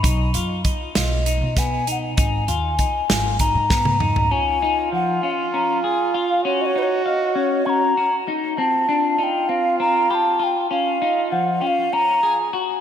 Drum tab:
HH |x-x-x-x-x-x-x-|x-x-x-x-x-----|--------------|--------------|
SD |------o---o---|------o---o---|--------------|--------------|
T1 |--------------|-----------o--|--------------|--------------|
T2 |--------------|------------o-|--------------|--------------|
FT |--------------|-------------o|--------------|--------------|
BD |o---o-----o---|o---o---o-o---|--------------|--------------|

HH |--------------|--------------|
SD |--------------|--------------|
T1 |--------------|--------------|
T2 |--------------|--------------|
FT |--------------|--------------|
BD |--------------|--------------|